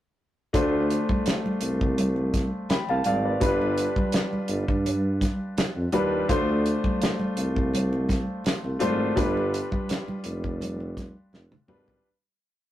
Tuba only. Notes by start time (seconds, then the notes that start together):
0.54 D2
1.61 C2
2.89 C2
3.06 G#1
3.42 G1
4.49 G1
4.68 G2
5.76 F2
5.93 D#2
6.29 D2
7.37 C2
8.64 C2
8.81 G#1
9.17 G1
10.25 F1
11.33 F1
11.69 G#1